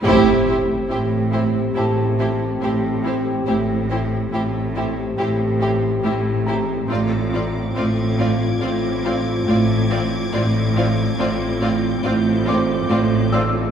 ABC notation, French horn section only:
X:1
M:4/4
L:1/8
Q:1/4=70
K:Aphr
V:1 name="French horn section"
[CG]8 | [CG]8 | [CF]8 | [CF]8 |]